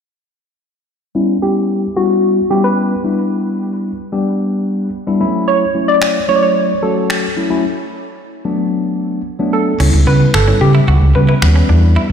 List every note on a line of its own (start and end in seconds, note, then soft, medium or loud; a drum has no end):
1.15 1.37 G3 medium
1.15 1.37 B3 medium
1.15 1.37 C#4 medium
1.15 1.37 E4 loud
1.42 1.85 G3 medium
1.42 1.85 B3 medium
1.42 1.85 C#4 medium
1.42 1.86 E4 medium
1.42 1.92 G4 medium
1.96 2.39 G3 medium
1.96 2.39 B3 medium
1.96 2.40 C#4 medium
1.96 2.40 E4 medium
1.96 2.52 F#4 medium
2.50 2.93 G3 medium
2.50 2.94 B3 medium
2.50 2.94 C#4 medium
2.50 2.94 E4 medium
2.50 2.63 G4 medium
2.64 3.02 B4 loud
3.04 3.91 G3 medium
3.04 3.91 B3 medium
3.04 3.91 D4 medium
3.04 3.91 E4 medium
4.12 4.88 G3 medium
4.12 4.88 B3 medium
4.12 4.88 D4 medium
4.12 4.88 G4 loud
5.07 5.20 G3 medium
5.07 5.21 B3 medium
5.07 5.21 D4 medium
5.07 5.20 E4 loud
5.20 5.64 F#3 medium
5.20 5.64 A3 medium
5.20 5.64 C#4 medium
5.20 5.64 E4 loud
5.48 5.85 C#5 loud
5.74 6.18 F#3 medium
5.74 6.18 A3 medium
5.74 6.18 C#4 medium
5.74 6.18 E4 medium
5.88 6.30 D5 loud
6.02 finger snap loud
6.28 6.72 F#3 medium
6.28 6.72 A3 medium
6.28 6.72 C#4 medium
6.28 6.72 E4 medium
6.28 6.36 C#5 loud
6.36 6.43 D5 medium
6.43 6.84 C#5 loud
6.82 7.26 F#3 medium
6.82 7.26 A3 medium
6.82 7.26 C#4 medium
6.82 7.26 F#4 medium
6.82 7.33 A4 medium
7.10 finger snap loud
7.37 7.47 F#3 medium
7.37 7.48 A3 medium
7.37 7.48 C#4 medium
7.37 7.48 E4 medium
7.50 7.64 F#3 loud
7.50 7.64 A3 medium
7.50 7.64 C#4 medium
7.50 7.64 E4 loud
8.45 9.20 F#3 medium
8.45 9.21 A3 medium
8.45 9.21 B3 medium
8.45 9.21 D4 loud
9.39 9.72 F#3 loud
9.39 9.72 A3 medium
9.39 9.72 B3 medium
9.39 9.72 D4 loud
9.53 10.09 A4 loud
9.80 9.89 C#2 loud
9.80 10.34 G3 medium
9.80 10.34 B3 medium
9.80 9.89 C#4 medium
9.80 10.34 C#4 medium
9.80 10.34 E4 medium
9.80 crash medium
9.94 10.02 C#2 medium
9.94 muted clean electric guitar stroke soft
10.07 10.25 C#3 loud
10.07 10.16 B3 medium
10.07 10.35 B4 loud
10.34 10.52 G1 loud
10.34 10.59 A4 loud
10.34 finger snap loud
10.47 11.02 G3 medium
10.47 11.02 B3 medium
10.47 10.57 C#4 medium
10.47 11.02 C#4 medium
10.47 11.02 E4 medium
10.61 10.79 C#3 medium
10.61 11.11 G4 loud
10.61 muted clean electric guitar stroke soft
10.75 10.84 E4 medium
10.88 10.97 C#2 medium
10.88 10.97 F#4 medium
11.02 11.11 C#2 medium
11.15 11.33 C#3 medium
11.15 11.37 G3 medium
11.15 11.37 B3 medium
11.15 11.37 C#4 medium
11.15 11.37 F#4 medium
11.15 11.28 B4 loud
11.15 muted clean electric guitar stroke soft
11.29 11.38 E4 medium
11.29 11.66 B4 medium
11.42 11.60 D#2 medium
11.42 11.68 G3 medium
11.42 11.68 B3 medium
11.42 11.69 C#4 medium
11.42 11.69 F#4 medium
11.42 finger snap loud
11.42 muted clean electric guitar stroke soft
11.56 11.65 C#4 medium
11.69 11.96 E2 medium
11.69 12.12 G3 medium
11.69 12.12 B3 medium
11.69 11.78 D4 medium
11.69 12.12 D4 medium
11.69 12.12 E4 medium
11.96 12.05 E4 medium